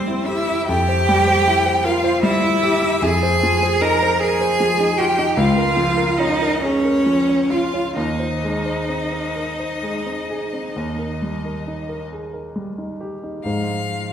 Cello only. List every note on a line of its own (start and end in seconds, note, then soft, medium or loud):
0.00 0.28 C4 loud
0.26 0.69 E4 loud
0.68 1.85 G4 loud
1.84 2.22 F4 loud
2.22 3.00 E4 loud
3.02 3.83 G#4 loud
3.81 4.22 A#4 loud
4.21 4.99 G#4 loud
4.98 5.39 G4 loud
5.37 6.19 F4 loud
6.18 6.61 D#4 loud
6.62 7.53 C#4 loud
7.51 7.95 F4 loud
7.96 12.05 D#4 medium
13.44 14.13 F3 medium